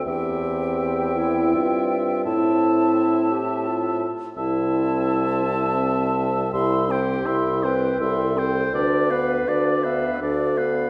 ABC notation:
X:1
M:3/4
L:1/8
Q:1/4=82
K:Am
V:1 name="Flute"
g6 | a4- a z | a6 | [K:C] c' g c' g c' g |
d f d f d f |]
V:2 name="Oboe"
e6 | e4- e z | e6 | [K:C] e c e c e c |
d B d B d B |]
V:3 name="Clarinet"
G3 E F2 | E3 G F z | E3 C z2 | [K:C] G3 B A2 |
B3 e A2 |]
V:4 name="French horn"
C6 | C4- C z | C6 | [K:C] E C E C E C |
D B, D B, D B, |]
V:5 name="Bassoon" clef=bass
E,,4 G,,2 | A,,4- A,, z | C,,6 | [K:C] C,,2 C,,2 C,,2 |
D,,2 D,,2 D,,2 |]